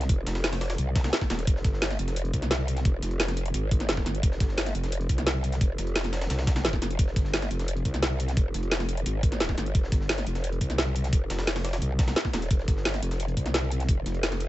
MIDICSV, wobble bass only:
0, 0, Header, 1, 2, 480
1, 0, Start_track
1, 0, Key_signature, -4, "minor"
1, 0, Tempo, 344828
1, 131, Time_signature, 4, 2, 24, 8
1, 20160, End_track
2, 0, Start_track
2, 0, Title_t, "Wobble bass"
2, 0, Program_c, 0, 39
2, 130, Note_on_c, 0, 29, 94
2, 351, Note_off_c, 0, 29, 0
2, 371, Note_on_c, 0, 29, 97
2, 1071, Note_off_c, 0, 29, 0
2, 1090, Note_on_c, 0, 36, 101
2, 1551, Note_off_c, 0, 36, 0
2, 1811, Note_on_c, 0, 27, 99
2, 2032, Note_off_c, 0, 27, 0
2, 2050, Note_on_c, 0, 29, 95
2, 2271, Note_off_c, 0, 29, 0
2, 2290, Note_on_c, 0, 31, 100
2, 2751, Note_off_c, 0, 31, 0
2, 2771, Note_on_c, 0, 29, 96
2, 3231, Note_off_c, 0, 29, 0
2, 3250, Note_on_c, 0, 36, 99
2, 3951, Note_off_c, 0, 36, 0
2, 3970, Note_on_c, 0, 29, 92
2, 4191, Note_off_c, 0, 29, 0
2, 4210, Note_on_c, 0, 29, 97
2, 4911, Note_off_c, 0, 29, 0
2, 4930, Note_on_c, 0, 32, 100
2, 5631, Note_off_c, 0, 32, 0
2, 5650, Note_on_c, 0, 31, 97
2, 5871, Note_off_c, 0, 31, 0
2, 5890, Note_on_c, 0, 29, 97
2, 6111, Note_off_c, 0, 29, 0
2, 6130, Note_on_c, 0, 31, 96
2, 6591, Note_off_c, 0, 31, 0
2, 6610, Note_on_c, 0, 29, 98
2, 7071, Note_off_c, 0, 29, 0
2, 7090, Note_on_c, 0, 36, 97
2, 7791, Note_off_c, 0, 36, 0
2, 7810, Note_on_c, 0, 29, 95
2, 8031, Note_off_c, 0, 29, 0
2, 8050, Note_on_c, 0, 29, 96
2, 8751, Note_off_c, 0, 29, 0
2, 8771, Note_on_c, 0, 36, 101
2, 9471, Note_off_c, 0, 36, 0
2, 9490, Note_on_c, 0, 29, 96
2, 9711, Note_off_c, 0, 29, 0
2, 9730, Note_on_c, 0, 29, 95
2, 9951, Note_off_c, 0, 29, 0
2, 9970, Note_on_c, 0, 31, 96
2, 10431, Note_off_c, 0, 31, 0
2, 10450, Note_on_c, 0, 29, 99
2, 10911, Note_off_c, 0, 29, 0
2, 10930, Note_on_c, 0, 36, 99
2, 11631, Note_off_c, 0, 36, 0
2, 11650, Note_on_c, 0, 29, 92
2, 11871, Note_off_c, 0, 29, 0
2, 11890, Note_on_c, 0, 29, 102
2, 12591, Note_off_c, 0, 29, 0
2, 12611, Note_on_c, 0, 32, 99
2, 13312, Note_off_c, 0, 32, 0
2, 13331, Note_on_c, 0, 31, 93
2, 13551, Note_off_c, 0, 31, 0
2, 13570, Note_on_c, 0, 29, 99
2, 13791, Note_off_c, 0, 29, 0
2, 13810, Note_on_c, 0, 31, 96
2, 14271, Note_off_c, 0, 31, 0
2, 14289, Note_on_c, 0, 29, 100
2, 14751, Note_off_c, 0, 29, 0
2, 14769, Note_on_c, 0, 36, 102
2, 15471, Note_off_c, 0, 36, 0
2, 15489, Note_on_c, 0, 29, 95
2, 15711, Note_off_c, 0, 29, 0
2, 15729, Note_on_c, 0, 29, 102
2, 16431, Note_off_c, 0, 29, 0
2, 16449, Note_on_c, 0, 36, 101
2, 16910, Note_off_c, 0, 36, 0
2, 17169, Note_on_c, 0, 27, 97
2, 17391, Note_off_c, 0, 27, 0
2, 17409, Note_on_c, 0, 29, 94
2, 17630, Note_off_c, 0, 29, 0
2, 17650, Note_on_c, 0, 31, 97
2, 18111, Note_off_c, 0, 31, 0
2, 18130, Note_on_c, 0, 29, 97
2, 18591, Note_off_c, 0, 29, 0
2, 18609, Note_on_c, 0, 36, 97
2, 19311, Note_off_c, 0, 36, 0
2, 19329, Note_on_c, 0, 29, 95
2, 19551, Note_off_c, 0, 29, 0
2, 19569, Note_on_c, 0, 29, 98
2, 20160, Note_off_c, 0, 29, 0
2, 20160, End_track
0, 0, End_of_file